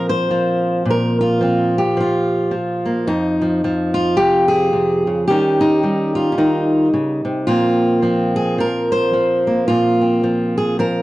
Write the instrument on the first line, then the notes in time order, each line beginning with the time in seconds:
steel-string acoustic guitar
Already playing: A#2 F3 C4
0.09 C5
0.31 F3
0.85 A#2
0.90 A#4
1.21 F4
1.41 F3 C4
1.78 G4
1.97 F3 F4
2.51 F3
2.86 A#3
3.07 F2 D#4
3.42 F3
3.64 F3
3.94 F4
4.17 C3 G4
4.48 G#4
4.73 C3
5.07 C#3
5.28 D#3 G3 C#4 G4
5.32 D#4
5.61 D#4
5.83 G3
6.15 F4
6.32 C#4
6.38 D#3 D#4
6.94 C#3
7.25 C3
7.47 A#2 F3 A#3 C4 F4
8.02 F3 C4
8.36 G#4
8.58 F3 A#4
8.92 C5
9.13 F3
9.47 A#3
9.68 A#2 F4
10.01 C4
10.23 F3
10.58 G#4
10.79 F3 A#4